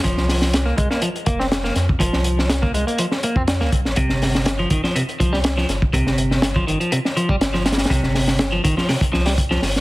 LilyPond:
<<
  \new Staff \with { instrumentName = "Clean electric guitar" } { \clef bass \time 4/4 \key c \minor \tempo 4 = 122 f4 r16 bes16 aes16 bes16 f16 r16 bes16 c'16 r16 bes16 r8 | f4 r16 bes16 aes16 bes16 f16 r16 bes16 c'16 r16 bes16 r8 | c4 r16 f16 ees16 f16 c16 r16 f16 g16 r16 f16 r8 | c4 r16 f16 ees16 f16 c16 r16 f16 g16 r16 f16 r8 |
c4 r16 f16 ees16 f16 c16 r16 f16 g16 r16 f16 r8 | }
  \new Staff \with { instrumentName = "Sub bass" } { \clef bass \time 4/4 \key c \minor f,,16 c,4~ c,16 c,16 r8. f,,4 f,8 | f,,16 c,4~ c,16 c,16 r4 f,8 c,16 c,16 g,,16 | c,16 g,,4~ g,,16 g,,16 r8. c,4 g,,8 | c,16 g,,4~ g,,16 g,,16 r4 g,,4~ g,,16 |
c,16 g,,4~ g,,16 g,,16 r8. c,4 g,,8 | }
  \new DrumStaff \with { instrumentName = "Drums" } \drummode { \time 4/4 <hh bd>16 sn16 <hho sn>16 sn16 <hh sn>8 <hh bd>16 sn16 hh16 hh16 <hh bd>16 sn16 <hh sn>16 sn16 <hh sn>16 bd16 | <hh bd>16 sn16 hh16 sn16 <hh sn>16 bd16 hh16 hh16 hh16 sn16 hh16 bd16 <hh sn>16 sn16 <hh bd>16 sn16 | <hh bd>16 sn16 <hho sn>16 sn16 <hh sn>8 <hh bd>16 sn16 hh16 hh16 <hh bd>16 sn16 <hh sn>16 sn16 <hh sn>16 bd16 | <hh bd>16 sn16 hh16 sn16 <hh sn>16 bd16 hh16 hh16 hh16 sn16 hh16 bd16 <hh sn>16 sn16 <hh sn>32 <hh sn>32 <hh sn>32 <hh sn>32 |
<hh bd>16 sn16 <hho sn>16 sn16 <hh sn>8 <hh bd>16 sn16 <hho sn>16 <hh bd>16 sn16 <hho sn>16 <hh bd>16 sn16 <hho sn>16 sn16 | }
>>